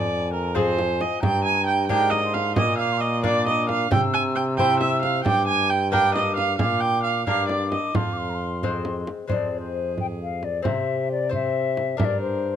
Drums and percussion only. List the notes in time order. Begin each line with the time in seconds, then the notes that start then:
0.57 frame drum
0.79 frame drum
1.01 frame drum
1.23 frame drum
1.89 frame drum
2.12 frame drum
2.34 frame drum
2.56 frame drum
3.24 frame drum
3.47 frame drum
3.69 frame drum
3.92 frame drum
4.58 frame drum
4.81 frame drum
5.03 frame drum
5.26 frame drum
5.94 frame drum
6.16 frame drum
6.38 frame drum
6.59 frame drum
7.27 frame drum
7.49 frame drum
7.72 frame drum
7.95 frame drum
8.63 frame drum
8.85 frame drum
9.07 frame drum
9.29 frame drum
9.98 frame drum
10.43 frame drum
10.65 frame drum
11.33 frame drum
11.77 frame drum
12.00 frame drum